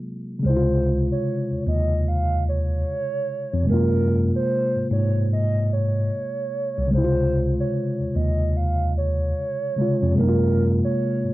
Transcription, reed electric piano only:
0.00 0.38 C3 medium
0.00 0.39 F#3 medium
0.00 0.40 G#3 medium
0.00 0.41 A#3 medium
0.00 0.43 F4 medium
0.39 3.62 C#3 medium
0.39 3.64 G#3 medium
0.46 3.62 C3 medium
0.46 0.55 E4 soft
0.56 3.70 F4 medium
3.63 6.86 C3 medium
3.63 6.88 G#3 medium
3.70 6.89 A#3 medium
3.70 6.91 F4 medium
6.87 9.70 C#3 medium
6.87 9.71 G#3 medium
6.94 9.73 C3 medium
6.94 7.03 E4 medium
7.04 9.78 F4 medium
9.76 10.10 C3 soft
9.76 10.17 C#3 soft
9.76 10.14 G#3 soft
9.81 10.19 F4 medium
10.11 11.34 C3 medium
10.11 11.34 G#3 medium
10.19 11.34 A#3 medium
10.19 10.27 D#4 soft
10.28 11.34 F4 medium

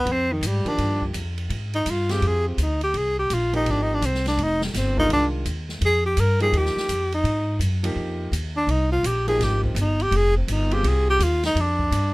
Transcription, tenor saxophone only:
0.00 0.14 B3 medium
0.12 0.34 C4 medium
0.33 0.48 D#3 medium
0.47 0.70 G3 medium
0.68 1.03 D4 medium
1.75 1.92 D#4 medium
1.90 2.13 F4 medium
2.12 2.28 G4 medium
2.27 2.48 G#4 loud
2.48 2.64 C4 medium
2.63 2.83 D#4 medium
2.84 2.98 G4 medium
2.97 3.18 G#4 loud
3.19 3.35 G4 medium
3.34 3.55 F4 medium
3.56 3.72 D#4 loud
3.70 3.84 D4 medium
3.82 3.96 D#4 medium
3.94 4.07 D4 medium
4.06 4.27 C4 medium
4.28 4.44 D4 medium
4.43 4.63 D#4 medium
4.65 4.78 G3 soft
4.77 4.98 C4 medium
4.99 5.10 D#4 loud
5.13 5.26 D4 medium
5.85 6.05 G#4 medium
6.06 6.21 G4 medium
6.20 6.42 A#4 medium
6.42 6.59 G#4 loud
6.57 7.14 G4 loud
7.14 7.59 D#4 medium
8.57 8.72 D4 loud
8.70 8.92 D#4 medium
8.92 9.08 F4 loud
9.06 9.28 G4 medium
9.28 9.45 G#4 loud
9.43 9.63 G4 medium
9.64 9.80 C4 medium
9.81 10.04 D#4 medium
10.02 10.18 G4 loud
10.16 10.37 G#4 loud
10.37 10.53 C4 medium
10.52 10.75 D#4 medium
10.73 10.89 G4 loud
10.87 11.09 G#4 medium
11.10 11.25 G4 loud
11.24 11.45 F4 medium
11.46 11.62 D#4 medium
11.60 12.14 D4 medium

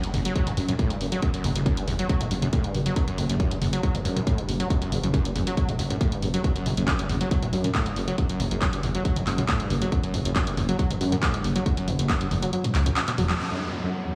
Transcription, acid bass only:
0.03 0.12 G2 medium
0.14 0.20 E2 medium
0.25 0.34 F#3 medium
0.36 0.48 F#3 medium
0.47 0.53 F#2 loud
0.57 0.61 G2 medium
0.69 0.74 F#2 medium
0.79 0.92 A2 loud
0.90 1.02 G2 medium
1.01 1.07 F#2 medium
1.12 1.21 F#3 medium
1.22 1.32 F#2 medium
1.34 1.46 F#2 loud
1.44 1.51 E2 medium
1.56 1.61 F#2 medium
1.66 1.79 F#2 loud
1.77 1.86 G2 medium
1.88 1.94 E2 medium
1.99 2.08 F#3 medium
2.09 2.22 F#3 medium
2.21 2.27 F#2 loud
2.31 2.35 G2 medium
2.42 2.48 F#2 medium
2.53 2.66 A2 medium
2.64 2.76 G2 medium
2.75 2.81 F#2 medium
2.86 2.95 F#3 medium
2.96 3.06 F#2 medium
3.08 3.20 F#2 loud
3.18 3.24 E2 medium
3.29 3.35 F#2 medium
3.40 3.53 F#2 loud
3.51 3.60 G2 medium
3.62 3.68 E2 medium
3.73 3.82 F#3 medium
3.83 3.96 F#3 medium
3.95 4.00 F#2 loud
4.05 4.09 G2 medium
4.16 4.22 F#2 medium
4.27 4.40 A2 loud
4.38 4.50 G2 medium
4.49 4.55 F#2 medium
4.60 4.69 F#3 medium
4.70 4.80 F#2 medium
4.82 4.94 F#2 loud
4.92 4.98 E2 medium
5.03 5.09 F#2 medium
5.14 5.27 F#2 loud
5.25 5.34 G2 medium
5.35 5.42 E2 medium
5.47 5.55 F#3 medium
5.57 5.70 F#3 medium
5.69 5.74 F#2 loud
5.79 5.83 G2 medium
5.91 5.96 F#2 medium
6.01 6.14 A2 loud
6.12 6.24 G2 medium
6.23 6.29 F#2 medium
6.34 6.42 F#3 medium
6.44 6.54 F#2 medium
6.56 6.68 F#2 loud
6.66 6.72 E2 medium
6.77 6.83 F#2 medium
6.88 7.01 F#2 loud
6.99 7.08 G2 medium
7.09 7.16 E2 medium
7.21 7.29 F#3 medium
7.31 7.44 F#3 medium
7.43 7.48 F#2 loud
7.53 7.57 G2 medium
7.64 7.70 F#2 medium
7.75 7.88 A2 loud
7.86 7.98 G2 medium
7.96 8.03 F#2 medium
8.08 8.16 F#3 medium
8.18 8.28 F#2 medium
8.29 8.41 F#2 loud
8.40 8.46 E2 medium
8.51 8.57 F#2 medium
8.62 8.75 F#2 loud
8.73 8.82 G2 medium
8.83 8.90 E2 medium
8.95 9.03 F#3 medium
9.05 9.18 F#3 medium
9.17 9.22 F#2 loud
9.27 9.31 G2 medium
9.38 9.44 F#2 medium
9.49 9.62 A2 loud
9.60 9.72 G2 medium
9.70 9.77 F#2 medium
9.82 9.90 F#3 medium
9.92 10.01 F#2 medium
10.03 10.15 F#2 loud
10.14 10.20 E2 medium
10.25 10.31 F#2 medium
10.36 10.49 F#2 loud
10.47 10.56 G2 medium
10.57 10.64 E2 medium
10.69 10.77 F#3 medium
10.79 10.92 F#3 medium
10.91 10.96 F#2 loud
11.01 11.05 G2 medium
11.12 11.18 F#2 medium
11.23 11.35 A2 loud
11.34 11.46 G2 medium
11.44 11.51 F#2 medium
11.56 11.64 F#3 medium
11.66 11.75 F#2 medium
11.77 11.89 F#2 loud
11.88 11.94 E2 medium
11.99 12.05 F#2 medium
12.09 12.22 F#2 loud
12.21 12.29 G2 medium
12.31 12.37 E2 medium
12.42 12.51 F#3 medium
12.53 12.66 F#3 medium
12.64 12.76 F#2 loud
12.75 12.81 E2 loud
12.86 12.89 F#2 medium
12.96 13.03 F#2 medium
13.08 13.11 B2 medium
13.18 13.24 F#3 loud
13.29 13.38 F#3 medium
13.40 13.49 F#2 medium
13.51 13.63 F#2 loud
13.62 13.68 E2 medium
13.73 13.79 F#2 medium
13.83 13.96 F#2 loud
13.95 14.03 G2 medium
14.05 14.11 E2 medium

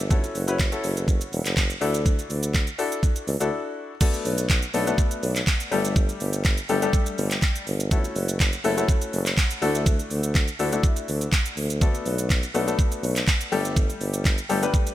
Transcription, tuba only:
0.00 0.22 G1 medium
0.35 0.71 F#1 medium
0.84 1.20 F#1 loud
1.32 1.42 E1 loud
1.45 1.72 F#1 loud
1.81 2.17 D2 medium
2.30 2.66 D2 medium
3.28 3.37 C#2 loud
3.41 3.49 D2 loud
4.25 4.61 B1 medium
4.74 4.92 B1 loud
5.23 5.41 B1 loud
5.72 6.08 G1 medium
6.20 6.57 G1 medium
6.69 6.87 G1 loud
7.18 7.36 G1 loud
7.67 8.03 G1 loud
8.16 8.52 F#1 medium
8.64 8.82 F#1 medium
9.13 9.31 F#1 loud
9.62 9.98 D2 medium
10.11 10.47 D2 medium
10.59 10.78 D2 loud
11.08 11.26 D2 loud
11.57 11.93 D2 medium
12.06 12.42 B1 medium
12.55 12.73 B1 medium
13.03 13.21 B1 loud
13.52 13.88 G1 medium
14.01 14.37 G1 medium
14.50 14.68 G1 medium

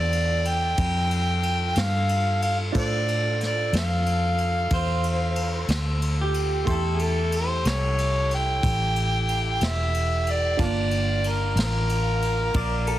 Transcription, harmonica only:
0.00 0.49 D5 loud
0.47 1.80 G5 loud
1.79 2.42 F5 loud
2.43 2.57 F5 medium
2.79 3.38 D5 loud
3.46 3.74 D5 medium
3.77 5.67 F5 loud
6.94 7.03 G#4 medium
7.01 7.38 A4 medium
7.36 7.68 C5 medium
7.67 8.31 C#5 medium
8.35 9.67 G5 loud
9.65 10.33 E5 loud
10.31 10.62 D5 medium
10.63 11.30 D5 loud
11.28 11.59 A#4 medium
11.62 12.99 A#4 medium

